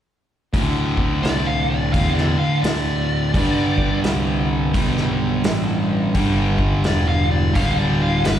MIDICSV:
0, 0, Header, 1, 6, 480
1, 0, Start_track
1, 0, Tempo, 700935
1, 368, Time_signature, 4, 2, 24, 8
1, 5748, End_track
2, 0, Start_track
2, 0, Title_t, "Lead electric guitar"
2, 0, Program_c, 0, 29
2, 841, Note_on_c, 0, 74, 85
2, 1000, Note_off_c, 0, 74, 0
2, 1003, Note_on_c, 0, 77, 78
2, 1160, Note_off_c, 0, 77, 0
2, 1163, Note_on_c, 0, 74, 88
2, 1319, Note_off_c, 0, 74, 0
2, 1322, Note_on_c, 0, 77, 80
2, 1469, Note_off_c, 0, 77, 0
2, 1472, Note_on_c, 0, 74, 76
2, 1632, Note_off_c, 0, 74, 0
2, 1634, Note_on_c, 0, 77, 68
2, 1788, Note_off_c, 0, 77, 0
2, 1791, Note_on_c, 0, 74, 86
2, 2733, Note_off_c, 0, 74, 0
2, 4697, Note_on_c, 0, 74, 96
2, 4848, Note_off_c, 0, 74, 0
2, 4852, Note_on_c, 0, 77, 77
2, 5003, Note_off_c, 0, 77, 0
2, 5006, Note_on_c, 0, 74, 90
2, 5163, Note_off_c, 0, 74, 0
2, 5172, Note_on_c, 0, 77, 78
2, 5326, Note_off_c, 0, 77, 0
2, 5335, Note_on_c, 0, 74, 86
2, 5488, Note_off_c, 0, 74, 0
2, 5496, Note_on_c, 0, 77, 76
2, 5648, Note_off_c, 0, 77, 0
2, 5652, Note_on_c, 0, 71, 94
2, 5748, Note_off_c, 0, 71, 0
2, 5748, End_track
3, 0, Start_track
3, 0, Title_t, "Overdriven electric guitar"
3, 0, Program_c, 1, 29
3, 365, Note_on_c, 1, 38, 76
3, 373, Note_on_c, 1, 45, 79
3, 382, Note_on_c, 1, 50, 82
3, 1316, Note_off_c, 1, 38, 0
3, 1321, Note_off_c, 1, 45, 0
3, 1325, Note_off_c, 1, 50, 0
3, 1325, Note_on_c, 1, 38, 59
3, 1334, Note_on_c, 1, 45, 68
3, 1343, Note_on_c, 1, 50, 74
3, 2276, Note_off_c, 1, 38, 0
3, 2281, Note_off_c, 1, 45, 0
3, 2285, Note_off_c, 1, 50, 0
3, 2286, Note_on_c, 1, 43, 75
3, 2296, Note_on_c, 1, 50, 72
3, 2305, Note_on_c, 1, 55, 83
3, 3241, Note_off_c, 1, 43, 0
3, 3242, Note_off_c, 1, 50, 0
3, 3243, Note_on_c, 1, 43, 58
3, 3256, Note_on_c, 1, 50, 66
3, 3258, Note_off_c, 1, 55, 0
3, 3261, Note_on_c, 1, 55, 68
3, 4195, Note_off_c, 1, 43, 0
3, 4202, Note_off_c, 1, 50, 0
3, 4206, Note_on_c, 1, 43, 79
3, 4214, Note_on_c, 1, 50, 78
3, 4222, Note_off_c, 1, 55, 0
3, 4224, Note_on_c, 1, 55, 78
3, 5152, Note_off_c, 1, 43, 0
3, 5160, Note_on_c, 1, 43, 64
3, 5161, Note_off_c, 1, 50, 0
3, 5171, Note_on_c, 1, 50, 64
3, 5177, Note_off_c, 1, 55, 0
3, 5180, Note_on_c, 1, 55, 73
3, 5748, Note_off_c, 1, 43, 0
3, 5748, Note_off_c, 1, 50, 0
3, 5748, Note_off_c, 1, 55, 0
3, 5748, End_track
4, 0, Start_track
4, 0, Title_t, "Picked electric bass"
4, 0, Program_c, 2, 34
4, 368, Note_on_c, 2, 38, 71
4, 834, Note_off_c, 2, 38, 0
4, 847, Note_on_c, 2, 36, 76
4, 1313, Note_off_c, 2, 36, 0
4, 1328, Note_on_c, 2, 40, 71
4, 1606, Note_off_c, 2, 40, 0
4, 1805, Note_on_c, 2, 38, 77
4, 2273, Note_off_c, 2, 38, 0
4, 2291, Note_on_c, 2, 43, 75
4, 2756, Note_off_c, 2, 43, 0
4, 2761, Note_on_c, 2, 36, 81
4, 3230, Note_off_c, 2, 36, 0
4, 3249, Note_on_c, 2, 35, 82
4, 3715, Note_off_c, 2, 35, 0
4, 3729, Note_on_c, 2, 33, 82
4, 4195, Note_off_c, 2, 33, 0
4, 4210, Note_on_c, 2, 31, 78
4, 4675, Note_off_c, 2, 31, 0
4, 4691, Note_on_c, 2, 28, 84
4, 5156, Note_off_c, 2, 28, 0
4, 5175, Note_on_c, 2, 26, 80
4, 5638, Note_off_c, 2, 26, 0
4, 5656, Note_on_c, 2, 31, 80
4, 5748, Note_off_c, 2, 31, 0
4, 5748, End_track
5, 0, Start_track
5, 0, Title_t, "Muted picked electric bass strokes"
5, 1628, Note_on_c, 9, 29, 36
5, 1696, Note_off_c, 9, 29, 0
5, 5748, End_track
6, 0, Start_track
6, 0, Title_t, "Drums"
6, 368, Note_on_c, 9, 36, 92
6, 369, Note_on_c, 9, 46, 42
6, 437, Note_off_c, 9, 36, 0
6, 437, Note_off_c, 9, 46, 0
6, 666, Note_on_c, 9, 36, 67
6, 734, Note_off_c, 9, 36, 0
6, 853, Note_on_c, 9, 46, 39
6, 860, Note_on_c, 9, 38, 87
6, 921, Note_off_c, 9, 46, 0
6, 928, Note_off_c, 9, 38, 0
6, 1328, Note_on_c, 9, 36, 97
6, 1328, Note_on_c, 9, 46, 44
6, 1397, Note_off_c, 9, 36, 0
6, 1397, Note_off_c, 9, 46, 0
6, 1489, Note_on_c, 9, 38, 29
6, 1557, Note_off_c, 9, 38, 0
6, 1808, Note_on_c, 9, 46, 50
6, 1815, Note_on_c, 9, 38, 102
6, 1877, Note_off_c, 9, 46, 0
6, 1884, Note_off_c, 9, 38, 0
6, 2289, Note_on_c, 9, 36, 98
6, 2291, Note_on_c, 9, 46, 44
6, 2357, Note_off_c, 9, 36, 0
6, 2360, Note_off_c, 9, 46, 0
6, 2587, Note_on_c, 9, 36, 77
6, 2656, Note_off_c, 9, 36, 0
6, 2766, Note_on_c, 9, 46, 40
6, 2773, Note_on_c, 9, 38, 91
6, 2835, Note_off_c, 9, 46, 0
6, 2842, Note_off_c, 9, 38, 0
6, 3249, Note_on_c, 9, 36, 100
6, 3250, Note_on_c, 9, 46, 41
6, 3317, Note_off_c, 9, 36, 0
6, 3318, Note_off_c, 9, 46, 0
6, 3403, Note_on_c, 9, 38, 29
6, 3472, Note_off_c, 9, 38, 0
6, 3726, Note_on_c, 9, 46, 47
6, 3733, Note_on_c, 9, 38, 98
6, 3794, Note_off_c, 9, 46, 0
6, 3801, Note_off_c, 9, 38, 0
6, 4209, Note_on_c, 9, 46, 42
6, 4211, Note_on_c, 9, 36, 89
6, 4278, Note_off_c, 9, 46, 0
6, 4280, Note_off_c, 9, 36, 0
6, 4509, Note_on_c, 9, 36, 70
6, 4577, Note_off_c, 9, 36, 0
6, 4684, Note_on_c, 9, 46, 42
6, 4691, Note_on_c, 9, 38, 93
6, 4753, Note_off_c, 9, 46, 0
6, 4759, Note_off_c, 9, 38, 0
6, 5173, Note_on_c, 9, 36, 99
6, 5173, Note_on_c, 9, 46, 50
6, 5241, Note_off_c, 9, 36, 0
6, 5241, Note_off_c, 9, 46, 0
6, 5649, Note_on_c, 9, 46, 51
6, 5656, Note_on_c, 9, 38, 98
6, 5718, Note_off_c, 9, 46, 0
6, 5725, Note_off_c, 9, 38, 0
6, 5748, End_track
0, 0, End_of_file